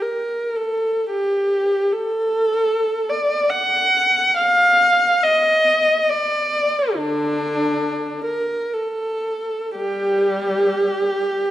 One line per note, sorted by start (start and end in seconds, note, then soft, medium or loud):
0.01 0.57 A#4 medium
0.56 1.11 A4 medium
1.11 1.92 G4 medium
1.92 3.10 A4 medium
3.10 3.50 D5 medium
3.51 4.38 F#5 medium
4.37 5.22 F5 medium
5.23 6.10 D#5 medium
6.09 6.95 D5 medium
6.95 8.21 D3 medium
6.95 8.25 D4 medium
8.25 8.72 A#4 medium
8.73 9.77 A4 medium
9.76 11.33 G3 medium
9.76 11.51 G4 medium